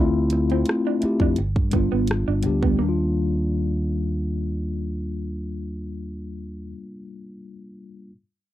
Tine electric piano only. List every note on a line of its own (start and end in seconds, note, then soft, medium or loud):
0.00 0.43 A3 loud
0.00 0.43 C4 medium
0.00 0.44 E4 medium
0.00 0.45 F4 loud
0.49 0.95 A3 medium
0.49 0.96 C4 medium
0.49 0.97 E4 medium
0.54 0.98 F4 medium
1.00 1.36 A3 medium
1.00 1.37 C4 medium
1.00 1.38 E4 medium
1.05 1.39 G4 medium
1.71 2.34 G3 medium
1.71 2.35 B3 medium
1.71 2.36 D4 medium
1.76 2.37 F4 medium
2.42 2.69 G3 medium
2.42 2.74 B3 medium
2.42 2.75 D4 medium
2.46 2.76 G4 medium
2.70 6.63 G3 medium
2.76 6.70 A#3 medium
2.82 6.76 D4 medium
2.89 6.82 F4 medium